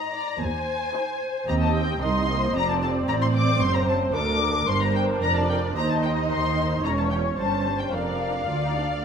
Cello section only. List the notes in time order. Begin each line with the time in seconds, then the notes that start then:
0.41 D#2
1.48 D#2
2.02 C2
2.55 F2
3.07 A2
3.60 F#2
4.13 D2
4.68 G2
5.22 F2
5.75 D#2
6.30 D#3
6.84 E2
7.38 G2
7.94 F2
8.50 D2